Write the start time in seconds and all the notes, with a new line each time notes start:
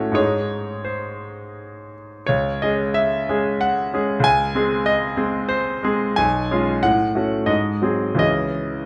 Already playing: A2 A3 C#4 F#4 C#5
0.12 G#2 G#3 D#4 G#4 C#5
0.85 C5
2.26 C#2 C#5
2.62 G#3 C#4 G#4 D#5
2.94 E5
3.29 G#3 C#4 G#4
3.61 F#5
3.94 G#3 C#4 G#4
4.20 C#2
4.24 G#5
4.55 G#3 C4 G#4
4.86 D#5
5.17 G#3 C4 G#4
5.49 C5
5.83 G#3 C4 G#4
6.16 B1 G#5
6.51 G#3 C#4 F4
6.83 A2 F#5
7.15 A3 C#4 F#4
7.46 G#2 D#5
7.82 F#3 C4 G#4
8.15 C#2 E3 C#4 G#4
8.19 D#5